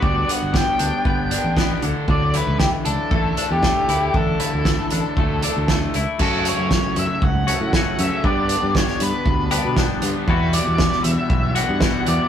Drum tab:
CC |----------------|----------------|----------------|x---------------|
HH |--x---x---x---x-|--x---x---x---x-|--x---x---x---x-|--x---x---x---x-|
SD |----o-------o---|----o-------o---|----o-------o---|----o-------o---|
BD |o---o---o---o---|o---o---o---o---|o---o---o---o---|o---o---o---o---|

CC |----------------|----------------|
HH |--x---x---x---x-|--x---x---x---x-|
SD |----oo------o---|----oo------o---|
BD |o---o---o---o---|o---o---o---o---|